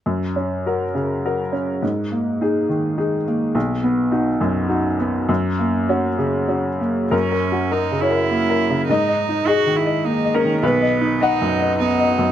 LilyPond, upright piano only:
\new Staff \with { instrumentName = "Upright piano" } { \time 3/4 \key fis \mixolydian \tempo 4 = 103 << { r2. | r2. | r2. | r2. |
ais'4. cis''4. | dis''4 gis'4. ais'8 | b'4 fis''2 | } \\ { fis,8 cis'8 <fis' ais'>8 cis8 <fis' ais'>8 cis'8 | gis,8 ais8 <dis' gis'>8 dis8 <dis' gis'>8 ais8 | b,,8 b8 <dis' fis'>8 fis,8 <dis' fis'>8 b8 | fis,8 ais8 <cis' fis'>8 cis8 <cis' fis'>8 ais8 |
\tuplet 3/2 { fis,8 ais'8 fis'8 ais'8 cis8 ais'8 ais8 ais'8 cis8 } | \tuplet 3/2 { gis,8 dis''8 dis'8 dis''8 dis8 dis''8 ais8 dis''8 dis8 } | \tuplet 3/2 { b,,8 dis''8 dis'8 dis''8 fis,8 dis''8 b8 dis''8 fis,8 } | } >> }